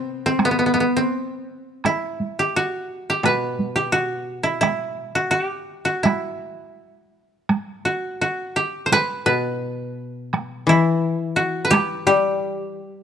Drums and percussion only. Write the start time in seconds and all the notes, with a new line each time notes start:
0.39 taiko rim, taiko high
0.76 taiko high
1.85 taiko rim, taiko high
2.20 taiko high
3.24 taiko rim, taiko high
3.59 taiko high
4.63 taiko rim, taiko high
6.05 taiko rim, taiko high
7.49 taiko rim, taiko high
8.93 taiko rim, taiko high
10.34 taiko rim, taiko high
11.73 taiko rim, taiko high